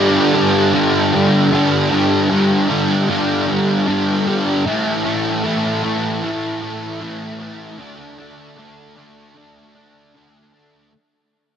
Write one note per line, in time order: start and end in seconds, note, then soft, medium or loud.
0.00 0.72 G2 medium
0.00 0.35 D3 loud
0.00 0.34 G3 loud
0.00 1.50 D4 medium
0.34 0.73 D3 medium
0.34 0.75 G3 medium
0.74 1.50 G2 medium
0.74 1.14 D3 medium
0.74 1.13 G3 medium
1.13 1.51 D3 medium
1.13 1.53 G3 medium
1.52 2.29 G2 medium
1.52 1.92 D3 medium
1.52 1.91 G3 loud
1.91 2.30 D3 medium
1.91 2.32 G3 medium
2.30 3.07 G2 medium
2.30 2.71 D3 medium
2.30 2.69 G3 medium
2.69 3.08 D3 medium
2.69 3.09 G3 medium
3.09 3.86 G2 medium
3.09 3.49 D3 medium
3.09 3.46 G3 loud
3.48 3.87 D3 medium
3.48 3.88 G3 medium
3.87 4.63 G2 medium
3.87 4.27 D3 medium
3.87 4.26 G3 loud
4.27 4.64 D3 medium
4.27 4.63 G3 medium
4.66 5.43 A2 medium
4.66 5.07 E3 loud
4.66 5.05 A3 loud
5.05 5.45 E3 medium
5.05 5.46 A3 medium
5.44 6.22 A2 medium
5.44 5.84 E3 medium
5.44 5.83 A3 medium
5.83 6.23 E3 medium
5.83 6.24 A3 medium
6.23 7.00 A2 medium
6.23 6.63 E3 medium
6.23 6.61 A3 loud
6.62 7.01 E3 medium
6.62 7.02 A3 medium
7.01 7.77 A2 medium
7.01 7.41 E3 medium
7.01 7.39 A3 medium
7.39 7.79 E3 medium
7.39 7.79 A3 medium
7.78 8.55 D3 medium
7.78 8.19 A3 loud
7.78 8.17 D4 loud
8.18 8.57 A3 medium
8.18 8.58 D4 medium
8.57 9.34 D3 medium
8.57 8.97 A3 medium
8.57 8.95 D4 medium
8.96 9.36 A3 medium
8.96 9.36 D4 medium
9.36 10.13 D3 medium
9.36 9.76 A3 medium
9.36 9.74 D4 medium
9.75 10.14 A3 medium
9.75 10.15 D4 medium
10.15 10.91 D3 medium
10.15 10.54 A3 medium
10.15 10.52 D4 medium
10.53 10.92 A3 medium
10.53 10.91 D4 medium